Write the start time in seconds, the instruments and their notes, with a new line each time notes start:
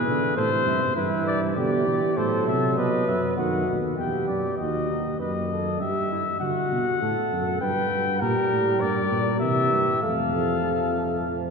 Already playing: flugelhorn G#4, trumpet B4
0.07 tuba B2, trombone D3
0.36 tuba A2, trombone C3, flugelhorn A4, trumpet C5
0.66 tuba G2, flugelhorn E4
0.96 tuba G2, trombone E3, flugelhorn E4, trumpet B4
1.27 trumpet D5
1.56 tuba B2, trombone D3, flugelhorn G4, trumpet D5
1.86 tuba B2, trombone E3
2.16 tuba A2, trombone F#3, flugelhorn A4, trumpet C5
2.48 tuba C3, trumpet E5
2.77 tuba B2, flugelhorn B4, trumpet D#5
3.07 tuba F#2, trumpet E5
3.37 tuba F#2, trombone D#3, flugelhorn F#4, trumpet F#5
3.67 tuba D#2, trombone B2
3.98 tuba E2, trombone B2, flugelhorn G4, trumpet G5
4.28 tuba F#2, trumpet D5
4.58 tuba D#2, flugelhorn F#4, trumpet D#5
4.89 flugelhorn D#4
5.19 tuba F#2, flugelhorn B4, trumpet D#5
5.50 flugelhorn A4
5.81 tuba G2, flugelhorn G4, trumpet E5
6.11 flugelhorn E4
6.41 tuba D3, flugelhorn F#4, trumpet F#5
6.72 tuba B2
7.01 tuba A2, flugelhorn A4
7.32 tuba F#2
7.61 tuba G2, flugelhorn B4, trumpet G5
7.92 tuba G2
8.21 tuba A#2, trombone G3, flugelhorn G4, trumpet A#4
8.52 tuba A2
8.81 tuba G2, flugelhorn A#4, trumpet D5
9.11 tuba A#2
9.40 tuba C3, trombone E3, flugelhorn G4, trumpet E5
9.72 tuba G2
10.02 tuba F2, trombone A3, flugelhorn A4, trumpet F5
10.34 trombone F3
11.28 trombone F3